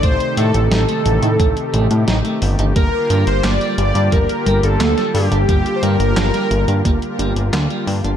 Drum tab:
HH |xxxxxxxxxxxxxxox|x-xxxxxxxxxxxxox|xxxxxxxxxxxxxxox|
CP |----------------|----x-------x---|----x-------x---|
SD |----o-------o---|----o-------oo--|----o-------o---|
BD |o-------o-------|o-------o-------|o-------o-------|